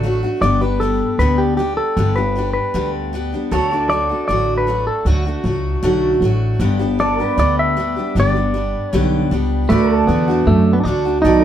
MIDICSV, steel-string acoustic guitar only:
0, 0, Header, 1, 2, 480
1, 0, Start_track
1, 0, Key_signature, 2, "major"
1, 0, Tempo, 386349
1, 532, Time_signature, 4, 2, 24, 8
1, 14218, End_track
2, 0, Start_track
2, 0, Title_t, "Steel-string acoustic guitar"
2, 0, Program_c, 0, 25
2, 42, Note_on_c, 0, 54, 63
2, 52, Note_on_c, 0, 57, 65
2, 67, Note_on_c, 0, 62, 65
2, 79, Note_on_c, 0, 66, 60
2, 267, Note_off_c, 0, 66, 0
2, 282, Note_on_c, 0, 66, 54
2, 287, Note_off_c, 0, 54, 0
2, 287, Note_off_c, 0, 62, 0
2, 292, Note_off_c, 0, 57, 0
2, 302, Note_on_c, 0, 62, 47
2, 323, Note_on_c, 0, 57, 40
2, 521, Note_on_c, 0, 43, 73
2, 527, Note_off_c, 0, 66, 0
2, 529, Note_off_c, 0, 62, 0
2, 532, Note_on_c, 0, 50, 74
2, 533, Note_on_c, 0, 55, 71
2, 536, Note_off_c, 0, 57, 0
2, 541, Note_on_c, 0, 59, 77
2, 544, Note_on_c, 0, 62, 78
2, 548, Note_on_c, 0, 67, 86
2, 747, Note_off_c, 0, 67, 0
2, 762, Note_on_c, 0, 67, 49
2, 765, Note_off_c, 0, 62, 0
2, 766, Note_off_c, 0, 43, 0
2, 772, Note_off_c, 0, 50, 0
2, 772, Note_off_c, 0, 55, 0
2, 774, Note_off_c, 0, 59, 0
2, 779, Note_on_c, 0, 62, 46
2, 788, Note_on_c, 0, 59, 40
2, 806, Note_on_c, 0, 55, 41
2, 994, Note_off_c, 0, 55, 0
2, 1007, Note_off_c, 0, 67, 0
2, 1009, Note_on_c, 0, 55, 57
2, 1010, Note_off_c, 0, 59, 0
2, 1016, Note_off_c, 0, 62, 0
2, 1025, Note_on_c, 0, 59, 62
2, 1032, Note_on_c, 0, 62, 61
2, 1047, Note_on_c, 0, 67, 65
2, 1485, Note_on_c, 0, 43, 72
2, 1486, Note_off_c, 0, 55, 0
2, 1494, Note_off_c, 0, 59, 0
2, 1495, Note_on_c, 0, 50, 72
2, 1500, Note_on_c, 0, 55, 81
2, 1501, Note_off_c, 0, 67, 0
2, 1504, Note_off_c, 0, 62, 0
2, 1509, Note_on_c, 0, 59, 81
2, 1509, Note_on_c, 0, 62, 81
2, 1516, Note_on_c, 0, 67, 79
2, 1940, Note_off_c, 0, 55, 0
2, 1955, Note_on_c, 0, 55, 58
2, 1959, Note_off_c, 0, 59, 0
2, 1968, Note_off_c, 0, 43, 0
2, 1973, Note_off_c, 0, 50, 0
2, 1974, Note_off_c, 0, 67, 0
2, 1974, Note_on_c, 0, 59, 60
2, 1982, Note_off_c, 0, 62, 0
2, 1986, Note_on_c, 0, 62, 57
2, 1989, Note_on_c, 0, 67, 67
2, 2439, Note_off_c, 0, 55, 0
2, 2445, Note_on_c, 0, 43, 70
2, 2448, Note_on_c, 0, 50, 65
2, 2452, Note_off_c, 0, 59, 0
2, 2454, Note_on_c, 0, 55, 71
2, 2457, Note_off_c, 0, 67, 0
2, 2463, Note_off_c, 0, 62, 0
2, 2466, Note_on_c, 0, 59, 77
2, 2468, Note_on_c, 0, 62, 80
2, 2472, Note_on_c, 0, 67, 81
2, 2665, Note_off_c, 0, 67, 0
2, 2680, Note_on_c, 0, 67, 54
2, 2683, Note_off_c, 0, 62, 0
2, 2688, Note_off_c, 0, 43, 0
2, 2689, Note_off_c, 0, 50, 0
2, 2693, Note_off_c, 0, 55, 0
2, 2695, Note_off_c, 0, 59, 0
2, 2698, Note_on_c, 0, 62, 44
2, 2709, Note_on_c, 0, 59, 39
2, 2716, Note_on_c, 0, 55, 43
2, 2911, Note_off_c, 0, 55, 0
2, 2924, Note_off_c, 0, 59, 0
2, 2925, Note_off_c, 0, 67, 0
2, 2926, Note_on_c, 0, 55, 53
2, 2935, Note_off_c, 0, 62, 0
2, 2939, Note_on_c, 0, 59, 59
2, 2954, Note_on_c, 0, 62, 57
2, 2965, Note_on_c, 0, 67, 61
2, 3399, Note_off_c, 0, 59, 0
2, 3400, Note_off_c, 0, 55, 0
2, 3403, Note_on_c, 0, 43, 68
2, 3404, Note_on_c, 0, 50, 68
2, 3413, Note_off_c, 0, 67, 0
2, 3413, Note_on_c, 0, 59, 70
2, 3415, Note_on_c, 0, 55, 78
2, 3416, Note_off_c, 0, 62, 0
2, 3421, Note_on_c, 0, 62, 88
2, 3428, Note_on_c, 0, 67, 81
2, 3872, Note_off_c, 0, 55, 0
2, 3885, Note_off_c, 0, 59, 0
2, 3887, Note_off_c, 0, 43, 0
2, 3887, Note_off_c, 0, 50, 0
2, 3887, Note_on_c, 0, 55, 68
2, 3899, Note_off_c, 0, 67, 0
2, 3900, Note_on_c, 0, 59, 64
2, 3908, Note_off_c, 0, 62, 0
2, 3913, Note_on_c, 0, 62, 75
2, 3924, Note_on_c, 0, 67, 71
2, 4116, Note_off_c, 0, 67, 0
2, 4129, Note_off_c, 0, 55, 0
2, 4130, Note_on_c, 0, 67, 51
2, 4132, Note_off_c, 0, 62, 0
2, 4135, Note_off_c, 0, 59, 0
2, 4147, Note_on_c, 0, 62, 43
2, 4153, Note_on_c, 0, 59, 44
2, 4166, Note_on_c, 0, 55, 41
2, 4367, Note_on_c, 0, 50, 72
2, 4371, Note_off_c, 0, 55, 0
2, 4371, Note_off_c, 0, 62, 0
2, 4371, Note_off_c, 0, 67, 0
2, 4376, Note_on_c, 0, 54, 86
2, 4377, Note_off_c, 0, 59, 0
2, 4382, Note_on_c, 0, 57, 87
2, 4386, Note_on_c, 0, 62, 90
2, 4391, Note_on_c, 0, 66, 84
2, 4595, Note_off_c, 0, 66, 0
2, 4609, Note_off_c, 0, 50, 0
2, 4610, Note_on_c, 0, 66, 51
2, 4614, Note_off_c, 0, 54, 0
2, 4616, Note_off_c, 0, 57, 0
2, 4618, Note_off_c, 0, 62, 0
2, 4634, Note_on_c, 0, 62, 54
2, 4648, Note_on_c, 0, 57, 44
2, 4845, Note_on_c, 0, 54, 57
2, 4851, Note_off_c, 0, 66, 0
2, 4852, Note_off_c, 0, 57, 0
2, 4862, Note_off_c, 0, 62, 0
2, 4867, Note_on_c, 0, 57, 58
2, 4878, Note_on_c, 0, 62, 59
2, 4886, Note_on_c, 0, 66, 64
2, 5070, Note_off_c, 0, 66, 0
2, 5085, Note_on_c, 0, 66, 47
2, 5088, Note_off_c, 0, 54, 0
2, 5096, Note_off_c, 0, 62, 0
2, 5099, Note_off_c, 0, 57, 0
2, 5111, Note_on_c, 0, 62, 44
2, 5123, Note_on_c, 0, 57, 33
2, 5327, Note_on_c, 0, 50, 73
2, 5328, Note_off_c, 0, 66, 0
2, 5331, Note_off_c, 0, 57, 0
2, 5331, Note_off_c, 0, 62, 0
2, 5333, Note_on_c, 0, 54, 69
2, 5345, Note_on_c, 0, 62, 78
2, 5346, Note_on_c, 0, 57, 69
2, 5352, Note_on_c, 0, 66, 80
2, 5786, Note_off_c, 0, 54, 0
2, 5799, Note_off_c, 0, 57, 0
2, 5801, Note_on_c, 0, 54, 58
2, 5809, Note_off_c, 0, 50, 0
2, 5814, Note_on_c, 0, 57, 64
2, 5822, Note_off_c, 0, 62, 0
2, 5822, Note_off_c, 0, 66, 0
2, 5827, Note_on_c, 0, 62, 60
2, 5837, Note_on_c, 0, 66, 61
2, 6277, Note_off_c, 0, 54, 0
2, 6286, Note_on_c, 0, 50, 72
2, 6287, Note_off_c, 0, 57, 0
2, 6292, Note_on_c, 0, 54, 77
2, 6297, Note_off_c, 0, 66, 0
2, 6299, Note_off_c, 0, 62, 0
2, 6302, Note_on_c, 0, 57, 73
2, 6304, Note_on_c, 0, 62, 73
2, 6312, Note_on_c, 0, 66, 88
2, 6508, Note_off_c, 0, 66, 0
2, 6523, Note_on_c, 0, 66, 49
2, 6529, Note_off_c, 0, 50, 0
2, 6532, Note_off_c, 0, 54, 0
2, 6532, Note_off_c, 0, 62, 0
2, 6537, Note_off_c, 0, 57, 0
2, 6546, Note_on_c, 0, 62, 45
2, 6565, Note_on_c, 0, 57, 44
2, 6756, Note_on_c, 0, 54, 54
2, 6757, Note_off_c, 0, 57, 0
2, 6767, Note_off_c, 0, 66, 0
2, 6770, Note_off_c, 0, 62, 0
2, 6771, Note_on_c, 0, 57, 55
2, 6785, Note_on_c, 0, 62, 59
2, 6797, Note_on_c, 0, 66, 66
2, 7234, Note_off_c, 0, 54, 0
2, 7239, Note_on_c, 0, 50, 92
2, 7241, Note_off_c, 0, 57, 0
2, 7249, Note_on_c, 0, 54, 87
2, 7253, Note_off_c, 0, 66, 0
2, 7255, Note_off_c, 0, 62, 0
2, 7256, Note_on_c, 0, 57, 98
2, 7260, Note_on_c, 0, 62, 88
2, 7268, Note_on_c, 0, 66, 92
2, 7712, Note_off_c, 0, 54, 0
2, 7721, Note_off_c, 0, 57, 0
2, 7726, Note_off_c, 0, 50, 0
2, 7727, Note_on_c, 0, 54, 60
2, 7736, Note_on_c, 0, 57, 61
2, 7740, Note_off_c, 0, 66, 0
2, 7746, Note_off_c, 0, 62, 0
2, 7751, Note_on_c, 0, 62, 79
2, 7764, Note_on_c, 0, 66, 71
2, 8196, Note_on_c, 0, 43, 73
2, 8203, Note_off_c, 0, 54, 0
2, 8206, Note_on_c, 0, 50, 83
2, 8208, Note_on_c, 0, 55, 79
2, 8209, Note_off_c, 0, 57, 0
2, 8213, Note_off_c, 0, 62, 0
2, 8214, Note_on_c, 0, 59, 86
2, 8217, Note_off_c, 0, 66, 0
2, 8218, Note_on_c, 0, 62, 94
2, 8222, Note_on_c, 0, 67, 90
2, 8426, Note_off_c, 0, 67, 0
2, 8436, Note_off_c, 0, 62, 0
2, 8441, Note_on_c, 0, 67, 63
2, 8444, Note_off_c, 0, 43, 0
2, 8449, Note_off_c, 0, 50, 0
2, 8450, Note_off_c, 0, 55, 0
2, 8450, Note_off_c, 0, 59, 0
2, 8451, Note_on_c, 0, 62, 52
2, 8465, Note_on_c, 0, 59, 52
2, 8472, Note_on_c, 0, 55, 48
2, 8668, Note_off_c, 0, 55, 0
2, 8683, Note_on_c, 0, 55, 54
2, 8684, Note_off_c, 0, 59, 0
2, 8687, Note_off_c, 0, 67, 0
2, 8692, Note_off_c, 0, 62, 0
2, 8699, Note_on_c, 0, 59, 54
2, 8705, Note_on_c, 0, 62, 59
2, 8720, Note_on_c, 0, 67, 61
2, 8912, Note_off_c, 0, 67, 0
2, 8927, Note_on_c, 0, 67, 44
2, 8928, Note_off_c, 0, 55, 0
2, 8931, Note_off_c, 0, 62, 0
2, 8936, Note_off_c, 0, 59, 0
2, 8946, Note_on_c, 0, 62, 46
2, 8957, Note_on_c, 0, 59, 41
2, 8971, Note_on_c, 0, 55, 34
2, 9164, Note_off_c, 0, 55, 0
2, 9164, Note_on_c, 0, 43, 74
2, 9170, Note_off_c, 0, 62, 0
2, 9170, Note_off_c, 0, 67, 0
2, 9171, Note_on_c, 0, 50, 73
2, 9172, Note_off_c, 0, 59, 0
2, 9179, Note_on_c, 0, 55, 75
2, 9185, Note_on_c, 0, 62, 81
2, 9187, Note_on_c, 0, 59, 88
2, 9192, Note_on_c, 0, 67, 82
2, 9635, Note_off_c, 0, 55, 0
2, 9646, Note_off_c, 0, 59, 0
2, 9649, Note_off_c, 0, 43, 0
2, 9650, Note_on_c, 0, 55, 64
2, 9652, Note_off_c, 0, 50, 0
2, 9661, Note_on_c, 0, 59, 57
2, 9663, Note_off_c, 0, 67, 0
2, 9671, Note_off_c, 0, 62, 0
2, 9676, Note_on_c, 0, 62, 57
2, 9687, Note_on_c, 0, 67, 61
2, 9879, Note_off_c, 0, 67, 0
2, 9892, Note_off_c, 0, 55, 0
2, 9894, Note_on_c, 0, 67, 44
2, 9895, Note_off_c, 0, 62, 0
2, 9897, Note_off_c, 0, 59, 0
2, 9910, Note_on_c, 0, 62, 41
2, 9924, Note_on_c, 0, 59, 44
2, 9931, Note_on_c, 0, 55, 38
2, 10133, Note_off_c, 0, 55, 0
2, 10134, Note_off_c, 0, 67, 0
2, 10136, Note_on_c, 0, 43, 80
2, 10138, Note_off_c, 0, 62, 0
2, 10142, Note_off_c, 0, 59, 0
2, 10143, Note_on_c, 0, 50, 74
2, 10148, Note_on_c, 0, 55, 78
2, 10153, Note_on_c, 0, 62, 80
2, 10157, Note_on_c, 0, 59, 71
2, 10162, Note_on_c, 0, 67, 80
2, 10349, Note_off_c, 0, 67, 0
2, 10364, Note_on_c, 0, 67, 46
2, 10365, Note_off_c, 0, 62, 0
2, 10375, Note_off_c, 0, 43, 0
2, 10379, Note_off_c, 0, 50, 0
2, 10379, Note_off_c, 0, 59, 0
2, 10380, Note_on_c, 0, 62, 47
2, 10381, Note_off_c, 0, 55, 0
2, 10394, Note_on_c, 0, 59, 45
2, 10401, Note_on_c, 0, 55, 42
2, 10593, Note_off_c, 0, 55, 0
2, 10608, Note_off_c, 0, 59, 0
2, 10608, Note_on_c, 0, 55, 61
2, 10609, Note_off_c, 0, 67, 0
2, 10617, Note_off_c, 0, 62, 0
2, 10623, Note_on_c, 0, 59, 54
2, 10637, Note_on_c, 0, 62, 59
2, 10643, Note_on_c, 0, 67, 59
2, 11085, Note_off_c, 0, 55, 0
2, 11090, Note_on_c, 0, 43, 77
2, 11092, Note_off_c, 0, 59, 0
2, 11094, Note_off_c, 0, 62, 0
2, 11094, Note_on_c, 0, 50, 85
2, 11098, Note_off_c, 0, 67, 0
2, 11100, Note_on_c, 0, 55, 89
2, 11107, Note_on_c, 0, 59, 96
2, 11109, Note_on_c, 0, 62, 88
2, 11113, Note_on_c, 0, 67, 98
2, 11554, Note_off_c, 0, 55, 0
2, 11568, Note_off_c, 0, 59, 0
2, 11569, Note_on_c, 0, 55, 66
2, 11571, Note_off_c, 0, 43, 0
2, 11573, Note_off_c, 0, 50, 0
2, 11581, Note_off_c, 0, 62, 0
2, 11583, Note_off_c, 0, 67, 0
2, 11583, Note_on_c, 0, 59, 73
2, 11597, Note_on_c, 0, 62, 71
2, 11607, Note_on_c, 0, 67, 71
2, 12044, Note_off_c, 0, 55, 0
2, 12049, Note_on_c, 0, 50, 81
2, 12053, Note_off_c, 0, 62, 0
2, 12054, Note_off_c, 0, 59, 0
2, 12059, Note_on_c, 0, 57, 69
2, 12068, Note_on_c, 0, 62, 83
2, 12069, Note_off_c, 0, 67, 0
2, 12074, Note_on_c, 0, 66, 91
2, 12518, Note_off_c, 0, 50, 0
2, 12533, Note_on_c, 0, 50, 59
2, 12540, Note_off_c, 0, 62, 0
2, 12541, Note_off_c, 0, 57, 0
2, 12546, Note_on_c, 0, 57, 64
2, 12562, Note_off_c, 0, 66, 0
2, 12563, Note_on_c, 0, 62, 63
2, 12567, Note_on_c, 0, 66, 67
2, 12755, Note_off_c, 0, 66, 0
2, 12770, Note_on_c, 0, 66, 54
2, 12772, Note_off_c, 0, 50, 0
2, 12778, Note_off_c, 0, 62, 0
2, 12779, Note_off_c, 0, 57, 0
2, 12793, Note_on_c, 0, 62, 52
2, 12809, Note_on_c, 0, 57, 48
2, 13483, Note_on_c, 0, 50, 61
2, 13487, Note_off_c, 0, 57, 0
2, 13490, Note_off_c, 0, 66, 0
2, 13494, Note_off_c, 0, 62, 0
2, 13502, Note_on_c, 0, 57, 57
2, 13509, Note_on_c, 0, 62, 68
2, 13518, Note_on_c, 0, 66, 70
2, 13714, Note_off_c, 0, 66, 0
2, 13726, Note_off_c, 0, 50, 0
2, 13729, Note_on_c, 0, 66, 50
2, 13732, Note_off_c, 0, 62, 0
2, 13736, Note_off_c, 0, 57, 0
2, 13747, Note_on_c, 0, 62, 48
2, 13767, Note_on_c, 0, 57, 42
2, 13969, Note_off_c, 0, 66, 0
2, 13975, Note_on_c, 0, 47, 83
2, 13978, Note_off_c, 0, 62, 0
2, 13979, Note_off_c, 0, 57, 0
2, 13982, Note_on_c, 0, 51, 86
2, 13994, Note_on_c, 0, 57, 83
2, 13995, Note_on_c, 0, 59, 86
2, 13998, Note_on_c, 0, 66, 82
2, 14218, Note_off_c, 0, 47, 0
2, 14218, Note_off_c, 0, 51, 0
2, 14218, Note_off_c, 0, 57, 0
2, 14218, Note_off_c, 0, 59, 0
2, 14218, Note_off_c, 0, 66, 0
2, 14218, End_track
0, 0, End_of_file